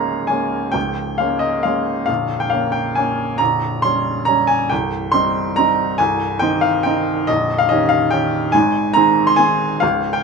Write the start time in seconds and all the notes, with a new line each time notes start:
Already playing: C#1 C#2 G#3 A#3 C#4 F5 A#5
0.27 G#3 A#3 C#4 G#5
0.72 C#1 C#2 G5
1.18 G#3 A#3 C#4 F5
1.39 D#5
1.63 G#3 A#3 C#4 F5
2.06 A#0 A#1 F5
2.40 G5
2.50 A#3 C#4 F5
2.72 G5
2.95 A#3 C#4 G#5
3.38 A#0 A#1 A#5
3.82 G3 C#4 C6
4.25 G3 C#4 A#5
4.47 G#5
4.70 C1 C2 G5
5.12 G3 C4 D#4 C6
5.56 G3 C4 D#4 A#5
5.98 C1 C2 G#5
6.39 D#3 C4 D#4 G5
6.61 F5
6.83 D#3 C4 D#4 G5
7.27 A#0 A#1 D#5
7.58 F5
7.69 D#3 C#4 G4 D#5
7.89 F5
8.11 D#3 C#4 G4 G5
8.52 G#1 G#2 G#5
8.94 D#3 C4 G#4 A#5
9.27 C6
9.36 D#3 C4 G#4 G#5
9.80 C#1 C#2 F5
10.13 G5